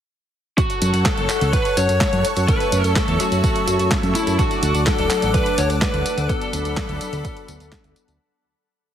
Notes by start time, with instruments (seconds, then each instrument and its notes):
0.57 lead electric guitar F#4, analog synth pad A4 C#5 F#5 C#6, kick, closed hi-hat, tambourine
0.70 closed hi-hat, tambourine
0.82 analog synth bass F#2, closed hi-hat, tambourine
0.94 analog synth bass F#2, closed hi-hat, tambourine
1.06 lead electric guitar A4, kick, snare, clap, closed hi-hat, tambourine
1.17 analog synth bass F#1, closed hi-hat, tambourine
1.29 clap, closed hi-hat, tambourine
1.41 analog synth bass C#2, closed hi-hat, tambourine
1.53 lead electric guitar B4, kick, closed hi-hat, tambourine
1.65 closed hi-hat, tambourine
1.77 analog synth bass F#2, lead electric guitar C#5, closed hi-hat, tambourine
1.89 analog synth bass F#2, closed hi-hat, tambourine
2.01 kick, snare, clap, closed hi-hat, tambourine
2.13 analog synth bass F#2, closed hi-hat, tambourine
2.25 closed hi-hat, tambourine
2.37 analog synth bass F#2, closed hi-hat, tambourine
2.48 analog polysynth F#3 A3 C#4 A4, lead electric guitar B4, analog synth pad E5, kick, closed hi-hat, tambourine
2.60 closed hi-hat, tambourine
2.72 analog synth bass F#2, closed hi-hat, tambourine
2.84 analog synth bass F#2, closed hi-hat, tambourine
2.96 lead electric guitar A4, kick, snare, clap, closed hi-hat, tambourine
3.08 analog synth bass E2, closed hi-hat, tambourine
3.20 analog polysynth F#3 A3 C#4 A4, lead electric guitar F#4, closed hi-hat, tambourine
3.32 analog synth bass F#2, closed hi-hat, tambourine
3.44 kick, closed hi-hat, tambourine
3.56 closed hi-hat, tambourine
3.67 analog synth bass F#2, closed hi-hat, tambourine
3.79 analog synth bass F#2, closed hi-hat, tambourine
3.91 kick, snare, clap, closed hi-hat, tambourine
4.03 analog synth bass F#2, closed hi-hat, tambourine
4.15 lead electric guitar E4, closed hi-hat, tambourine
4.27 analog synth bass F#2, closed hi-hat, tambourine
4.39 analog polysynth F#3 A3 D4 A4, lead electric guitar F#4, analog synth pad D5 F#5 D6, kick, closed hi-hat, tambourine
4.51 closed hi-hat, tambourine
4.63 analog synth bass D2, closed hi-hat, tambourine
4.75 analog synth bass D2, closed hi-hat, tambourine
4.86 lead electric guitar A4, kick, snare, clap, closed hi-hat, tambourine
4.98 analog synth bass D1, closed hi-hat, tambourine
5.10 analog polysynth F#3 A3 D4 A4, clap, closed hi-hat, tambourine
5.22 analog synth bass A1, closed hi-hat, tambourine
5.34 lead electric guitar B4, kick, closed hi-hat, tambourine
5.46 closed hi-hat, tambourine
5.58 analog synth bass D2, lead electric guitar C#5, closed hi-hat, tambourine
5.70 analog synth bass D2, closed hi-hat, tambourine
5.82 lead electric guitar B4, kick, snare, clap, closed hi-hat, tambourine
5.94 analog synth bass D2, closed hi-hat, tambourine
6.06 closed hi-hat, tambourine
6.17 analog synth bass D2, closed hi-hat, tambourine
6.29 analog polysynth F#3 B3 D4 A4, lead electric guitar A4, analog synth pad D5 B5, kick, closed hi-hat, tambourine
6.41 closed hi-hat, tambourine
6.53 analog synth bass D2, closed hi-hat, tambourine
6.65 analog synth bass D2, closed hi-hat, tambourine
6.77 kick, snare, clap, closed hi-hat, tambourine
6.89 analog synth bass D2, closed hi-hat, tambourine
7.01 analog polysynth F#3 B3 D4 A4, closed hi-hat, tambourine
7.13 analog synth bass D2, closed hi-hat, tambourine
7.25 kick, closed hi-hat, tambourine
7.37 closed hi-hat, tambourine
7.48 analog synth bass D2, analog polysynth F#3 B3 D4 A4, closed hi-hat, tambourine
7.60 analog synth bass D2, closed hi-hat, tambourine
7.72 kick, snare, clap, closed hi-hat, tambourine
7.84 analog synth bass D2, closed hi-hat, tambourine
7.96 closed hi-hat, tambourine
8.08 analog synth bass D2, closed hi-hat, tambourine